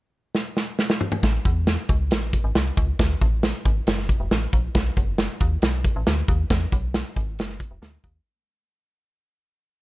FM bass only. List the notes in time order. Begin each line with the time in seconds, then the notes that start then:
1.23 A1
1.45 E2
1.89 C#2
2.11 A1
2.44 G#1
2.55 C2
2.77 C#2
2.99 D2
3.21 A1
3.65 G#1
3.87 F#1
4.20 E1
4.31 A1
4.53 A#1
4.75 B1
4.97 F#1
5.41 D#2
5.63 B1
5.96 A1
6.07 D2
6.28 D#2
6.50 E2
6.72 B1
7.16 G#1
7.38 F#1
7.71 E1
7.82 D2
8.04 D#2